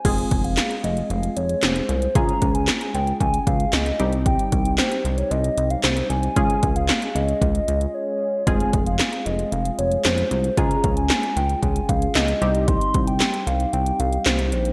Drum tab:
CC |x---------------|----------------|----------------|----------------|
HH |xxxxxxxxxxxxxxxx|xxxxxxxxxxxxxxxx|xxxxxxxxxxxxxxxx|xxxxxxxxxxxx----|
CP |----x-------x---|----x-------x---|----x-------x---|----x-----------|
SD |----o-------o---|----o-------o---|----o-------o---|----o-----------|
BD |o-o-------------|o-o-----o-o-----|o-o-------------|o-o-----o-------|

CC |----------------|----------------|----------------|
HH |xxxxxxxxxxxxxxxx|xxxxxxxxxxxxxxxx|xxxxxxxxxxxxxxxx|
CP |----x-------x---|----x-------x---|----x-------x---|
SD |----o-------o---|----o-------o---|----o-------o---|
BD |o-o-------------|o-o-----o-o-----|o-o-------------|